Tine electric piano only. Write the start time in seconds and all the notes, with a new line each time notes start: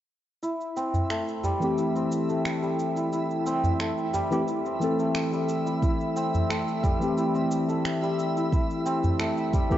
1.60 E3 A3 C4
1.64 G4
4.31 E3 A3 C4 G4
4.80 E3 A3 C4
4.84 A4
7.00 E3 A3 C4 G4
9.70 E3 A3 C4 G4